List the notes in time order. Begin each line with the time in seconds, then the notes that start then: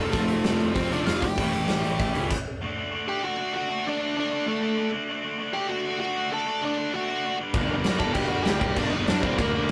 Already playing: F1 A4 A5
0.00 F2 C3 F3 A3 C4 F4
0.11 F1 A3 A4, kick, open hi-hat
0.28 F1, open hi-hat
0.44 F1 F2 C3, snare, open hi-hat
0.49 F3
0.60 F1, open hi-hat
0.74 F1 F3 A3 C4 C5, kick, open hi-hat
0.79 F4
0.91 F1 F2 C3 F3 A3 C4 D4 F4 D5, open hi-hat
0.96 F3
1.05 F1 F4 F5, snare, open hi-hat
1.21 F1 G4 G5, kick, open hi-hat
1.37 A1 A2 E3 A3 C#4, kick, open hi-hat
1.41 A3 E4
1.53 A1, open hi-hat
1.68 A1, snare, open hi-hat
1.84 A1 E3 A3, open hi-hat
1.89 A2
1.99 A1, kick, open hi-hat
2.13 C#2 A2 E3 A3 C#4 E4, open hi-hat
2.31 kick, crash
2.61 D3 A3 D4
2.76 D3 A3 D4
2.91 D3 A3 D4
3.06 D3 A3 D4 G4 G5
3.22 D3 A3 D4 F#4 F#5
3.37 D3 A3 D4
3.53 D3 A3 D4 F#4
3.57 F#5
3.68 D3 A3 D4
3.84 D3 A3 D4
3.89 D5
4.00 D3 A3 D4
4.16 D3 A3 D4 D5
4.31 D3 A3 D4
4.46 D3 A3 D4 A4
4.61 D3 A3 D4
4.77 D3 A3 D4
4.92 D3 A3 D4
5.08 D3 A3 D4
5.23 D3 A3 D4
5.38 D3 A3 D4
5.53 D3 A3 D4 G4 G5
5.69 D3 A3 D4 F#4 F#5
5.84 D3 A3 D4
6.00 D3 A3 D4 F#4 F#5
6.16 D3 A3 D4
6.31 D3 A3 D4 A4 A5
6.46 D3 A3 D4
6.62 D3 A3 D4 D5
6.78 D3 A3 D4
6.93 D3 A3 D4 F#4 F#5
7.09 D3 A3 D4
7.24 D3 A3 D4
7.39 G2 D3 G3
7.53 G1 G2 D3 G3 A#3 D4 A#4, kick, crash
7.70 G1 G2 D3 G3 A#3 D4 A#4
7.84 F#2 G2 D3 G3 A#3 D4, snare, crash
7.88 G3 A#4
7.99 G1 G2 D3 G3 A#3 D4 A4 A#4 A5, kick
8.03 G2 D3 G3
8.14 G1 G2 D3 G3 A#3 G4 G5, kick, crash
8.18 D4 A#4
8.28 G3 A#3 D4 F#4 A#4 F#5
8.32 G2 D3 G3
8.43 G2 D3 G3 G4 G5, snare, crash
8.47 D2 G2 D3 G3 A#3 D4 A#4
8.60 C2 G2 D3 G3 A#3 D4 A#4 G5, kick
8.64 G2 G4
8.74 G1 G2 D3 G3 A#3 D5, kick, crash
8.78 D3 G3 D4 A#4
8.90 G1 G2 D3 G3 A#3 D4 A#4 D#5
8.94 G2 D3 G3 D#4
9.06 G2 D3 G3 A#3 D4 D5, snare, crash
9.10 F#2 D4 A#4
9.22 G1 G2 D3 G3 A#3 D4 A#4 C5, kick
9.26 C4
9.37 D2 G2 D3 G3 A#3 A#4, kick, crash
9.41 D4 A#4
9.54 G2 D3 G3 A#3 D4 A#4